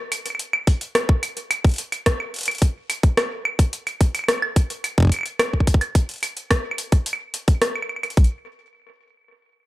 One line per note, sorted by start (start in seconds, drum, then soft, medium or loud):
0.12 closed hi-hat medium
0.12 claves soft
0.26 closed hi-hat soft
0.26 claves soft
0.30 claves soft
0.35 claves soft
0.39 closed hi-hat medium
0.53 claves medium
0.67 kick loud
0.67 closed hi-hat medium
0.81 closed hi-hat soft
0.95 cross-stick loud
0.95 closed hi-hat medium
0.95 claves soft
1.09 kick loud
1.23 closed hi-hat medium
1.23 claves soft
1.37 closed hi-hat soft
1.51 closed hi-hat medium
1.51 claves medium
1.65 kick medium
1.65 closed hi-hat soft
1.67 closed hi-hat soft
1.69 closed hi-hat soft
1.71 closed hi-hat soft
1.74 closed hi-hat soft
1.76 closed hi-hat soft
1.78 closed hi-hat medium
1.92 closed hi-hat soft
1.92 claves soft
2.06 kick loud
2.06 cross-stick loud
2.06 closed hi-hat medium
2.20 claves soft
2.34 closed hi-hat soft
2.36 closed hi-hat soft
2.39 closed hi-hat soft
2.41 closed hi-hat soft
2.43 closed hi-hat medium
2.46 closed hi-hat medium
2.48 closed hi-hat soft
2.48 claves medium
2.51 closed hi-hat soft
2.55 closed hi-hat soft
2.58 kick medium
2.58 closed hi-hat soft
2.62 closed hi-hat medium
2.90 closed hi-hat medium
2.90 claves soft
3.03 kick loud
3.03 closed hi-hat soft
3.17 cross-stick loud
3.17 closed hi-hat medium
3.17 claves soft
3.45 claves medium
3.59 kick medium
3.59 closed hi-hat medium
3.73 closed hi-hat medium
3.87 closed hi-hat soft
3.87 claves medium
4.01 kick loud
4.01 closed hi-hat medium
4.15 closed hi-hat soft
4.15 claves soft
4.19 claves soft
4.24 claves soft
4.28 cross-stick loud
4.28 closed hi-hat medium
4.28 claves soft
4.33 claves soft
4.38 claves soft
4.42 claves medium
4.56 kick medium
4.56 closed hi-hat medium
4.70 closed hi-hat soft
4.84 closed hi-hat medium
4.84 claves soft
4.98 kick loud
5.00 kick medium
5.03 kick medium
5.05 kick medium
5.07 kick soft
5.09 kick soft
5.09 closed hi-hat medium
5.09 claves soft
5.14 claves soft
5.16 claves soft
5.19 claves soft
5.21 claves soft
5.23 closed hi-hat soft
5.23 claves soft
5.39 cross-stick loud
5.39 closed hi-hat medium
5.39 claves medium
5.53 kick soft
5.60 kick medium
5.67 kick medium
5.67 closed hi-hat medium
5.74 kick medium
5.81 closed hi-hat soft
5.81 claves medium
5.95 kick loud
5.95 closed hi-hat medium
6.09 closed hi-hat soft
6.11 closed hi-hat soft
6.14 closed hi-hat soft
6.16 closed hi-hat soft
6.18 closed hi-hat soft
6.20 closed hi-hat soft
6.23 closed hi-hat medium
6.23 claves medium
6.37 closed hi-hat soft
6.51 kick medium
6.51 cross-stick loud
6.51 closed hi-hat medium
6.71 claves soft
6.78 closed hi-hat medium
6.92 kick loud
6.92 closed hi-hat soft
7.06 closed hi-hat medium
7.13 claves soft
7.34 closed hi-hat medium
7.48 kick medium
7.48 closed hi-hat soft
7.62 cross-stick loud
7.62 closed hi-hat medium
7.76 claves soft
7.82 claves soft
7.89 claves soft
7.96 claves soft
8.03 closed hi-hat soft
8.03 claves soft
8.10 closed hi-hat soft
8.17 kick medium
8.17 closed hi-hat soft
8.24 closed hi-hat soft